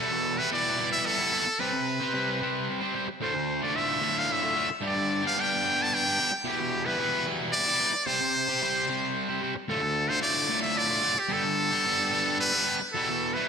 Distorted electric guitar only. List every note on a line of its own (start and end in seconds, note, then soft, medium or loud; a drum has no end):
0.00 0.39 E2 medium
0.00 0.39 B2 loud
0.00 0.11 E3 loud
0.00 0.12 G3 loud
0.00 0.11 B3 loud
0.00 0.11 E4 loud
0.12 muted distorted electric guitar stroke medium
0.39 0.51 E3 medium
0.39 0.52 G3 medium
0.39 0.52 B3 medium
0.39 0.52 E4 medium
0.52 1.06 E2 medium
0.52 1.06 B2 medium
0.52 0.77 E3 loud
0.52 0.78 G3 loud
0.52 0.79 B3 loud
0.52 0.79 E4 loud
0.78 1.20 E3 medium
0.78 1.19 G3 medium
0.78 1.19 B3 loud
0.78 1.18 E4 loud
1.19 1.32 E3 medium
1.19 1.32 G3 medium
1.19 1.33 B3 medium
1.19 1.33 E4 medium
1.33 1.46 E3 medium
1.33 1.46 G3 medium
1.33 1.46 B3 medium
1.33 1.46 E4 medium
1.47 muted distorted electric guitar stroke medium
1.60 2.01 C3 medium
1.60 1.73 G3 medium
1.60 1.73 C4 loud
1.60 1.72 G4 loud
1.60 1.72 C5 loud
1.73 muted distorted electric guitar stroke medium
2.00 2.13 C4 medium
2.00 2.14 G4 medium
2.00 2.14 C5 medium
2.13 2.68 C3 loud
2.13 2.40 G3 medium
2.13 2.40 C4 loud
2.13 2.41 G4 loud
2.13 2.42 C5 loud
2.41 2.93 G3 medium
2.41 2.81 C4 medium
2.41 2.81 G4 medium
2.41 2.79 C5 medium
2.81 2.93 C4 medium
2.81 2.94 G4 medium
2.81 2.95 C5 medium
2.94 3.08 G3 medium
2.94 3.08 C4 medium
2.94 3.07 G4 medium
2.94 3.07 C5 medium
3.08 muted distorted electric guitar stroke soft
3.21 3.74 D2 loud
3.21 3.34 A2 medium
3.21 3.34 D3 loud
3.21 3.34 A3 loud
3.21 3.33 F4 medium
3.34 muted distorted electric guitar stroke medium
3.61 3.75 D3 medium
3.61 3.76 A3 medium
3.61 3.75 F4 medium
3.75 4.29 D2 medium
3.75 4.00 A2 medium
3.75 4.00 D3 loud
3.75 4.01 A3 loud
3.75 4.02 F4 loud
4.01 4.54 A2 medium
4.01 4.43 D3 medium
4.01 4.42 A3 medium
4.01 4.41 F4 medium
4.42 4.55 D3 medium
4.42 4.55 A3 medium
4.42 4.56 F4 medium
4.55 4.69 A2 medium
4.55 4.69 D3 medium
4.55 4.69 A3 medium
4.55 4.69 F4 medium
4.70 muted distorted electric guitar stroke medium
4.82 5.23 G2 loud
4.82 5.23 D3 medium
4.82 4.97 G3 loud
4.82 4.96 B3 medium
4.82 4.96 D4 loud
4.82 4.96 G4 loud
4.96 muted distorted electric guitar stroke medium
5.23 5.37 G3 medium
5.23 5.38 B3 medium
5.23 5.37 D4 medium
5.23 5.38 G4 medium
5.37 5.91 G2 medium
5.37 5.91 D3 medium
5.37 5.64 G3 loud
5.37 5.64 B3 loud
5.37 5.65 D4 loud
5.37 5.66 G4 loud
5.64 6.06 G3 medium
5.64 6.05 B3 loud
5.64 6.04 D4 medium
5.64 6.04 G4 medium
6.04 6.18 G3 medium
6.04 6.18 B3 medium
6.04 6.19 D4 medium
6.04 6.20 G4 medium
6.18 6.32 G3 medium
6.18 6.31 B3 medium
6.18 6.30 D4 medium
6.18 6.31 G4 medium
6.31 muted distorted electric guitar stroke medium
6.44 6.85 E2 loud
6.44 6.86 B2 medium
6.44 6.59 E3 loud
6.44 6.60 G3 loud
6.44 6.59 B3 loud
6.44 6.58 E4 loud
6.59 muted distorted electric guitar stroke medium
6.85 6.98 E3 medium
6.85 6.99 G3 medium
6.85 6.99 B3 medium
6.85 6.99 E4 medium
6.98 7.53 E2 loud
6.98 7.53 B2 loud
6.98 7.24 E3 loud
6.98 7.24 G3 loud
6.98 7.25 B3 loud
6.98 7.26 E4 loud
7.25 7.67 E3 medium
7.25 7.66 G3 medium
7.25 7.66 B3 medium
7.25 7.65 E4 loud
7.66 7.78 E3 medium
7.66 7.79 G3 medium
7.66 7.80 B3 medium
7.66 7.80 E4 medium
7.79 7.93 E3 medium
7.79 7.93 G3 medium
7.79 7.92 B3 medium
7.79 7.92 E4 loud
7.94 muted distorted electric guitar stroke soft
8.07 8.48 C3 medium
8.07 8.20 G3 medium
8.07 8.20 C4 medium
8.07 8.20 G4 loud
8.07 8.19 C5 loud
8.21 muted distorted electric guitar stroke medium
8.48 8.61 C4 medium
8.48 8.61 G4 medium
8.48 8.62 C5 medium
8.61 9.15 C3 loud
8.61 8.87 G3 loud
8.61 8.88 C4 loud
8.61 8.88 G4 loud
8.61 8.89 C5 loud
8.88 9.40 G3 medium
8.88 9.29 C4 loud
8.88 9.29 G4 medium
8.88 9.27 C5 loud
9.29 9.41 C4 medium
9.29 9.42 G4 medium
9.29 9.42 C5 medium
9.41 9.55 G3 medium
9.41 9.55 C4 medium
9.41 9.54 G4 medium
9.41 9.54 C5 medium
9.55 muted distorted electric guitar stroke medium
9.68 10.21 D2 medium
9.68 9.81 A2 loud
9.68 9.82 D3 loud
9.68 9.82 A3 medium
9.68 9.81 F4 medium
9.82 muted distorted electric guitar stroke soft
10.09 10.22 D3 medium
10.09 10.22 A3 medium
10.09 10.21 F4 medium
10.21 10.76 D2 loud
10.21 10.48 A2 loud
10.21 10.49 D3 loud
10.21 10.49 A3 loud
10.21 10.50 F4 loud
10.49 11.01 A2 medium
10.49 10.90 D3 medium
10.49 10.89 A3 medium
10.49 10.88 F4 medium
10.89 11.02 D3 medium
10.89 11.02 A3 medium
10.89 11.03 F4 medium
11.02 11.15 A2 medium
11.02 11.15 D3 medium
11.02 11.14 A3 medium
11.02 11.14 F4 medium
11.16 muted distorted electric guitar stroke medium
11.29 11.70 G2 medium
11.29 11.71 D3 loud
11.29 11.44 G3 medium
11.29 11.44 B3 loud
11.29 11.43 D4 loud
11.29 11.44 G4 loud
11.44 muted distorted electric guitar stroke medium
11.71 11.85 G3 medium
11.71 11.85 B3 medium
11.71 11.85 D4 medium
11.71 11.86 G4 medium
11.85 12.39 G2 loud
11.85 12.39 D3 medium
11.85 12.11 G3 loud
11.85 12.11 B3 loud
11.85 12.11 D4 loud
11.85 12.13 G4 loud
12.12 12.54 G3 medium
12.12 12.53 B3 medium
12.12 12.53 D4 medium
12.12 12.53 G4 medium
12.53 12.66 G3 medium
12.53 12.66 B3 medium
12.53 12.66 D4 medium
12.53 12.68 G4 medium
12.66 12.81 G3 medium
12.66 12.80 B3 medium
12.66 12.80 D4 medium
12.66 12.80 G4 medium
12.81 muted distorted electric guitar stroke medium
12.94 13.34 E2 medium
12.94 13.35 B2 loud
12.94 13.09 E3 loud
12.94 13.09 G3 loud
12.94 13.09 B3 loud
12.94 13.08 E4 loud
13.09 muted distorted electric guitar stroke soft
13.35 13.48 E3 medium
13.35 13.48 G3 medium
13.35 13.48 B3 medium
13.35 13.48 E4 medium